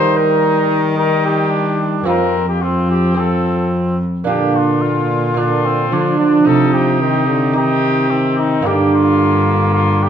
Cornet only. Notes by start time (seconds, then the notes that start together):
Already playing: C5
0.17 A#4
0.98 A#4
1.26 G4
2.08 A#4
2.49 G4
2.62 F4
2.91 G4
3.18 A4
4.28 G4
4.56 F4
5.38 F4
6.19 D4
6.47 A4
6.73 G4
7.56 G4
8.38 D#4
8.65 G4
8.94 F4
9.74 F4
10.03 G4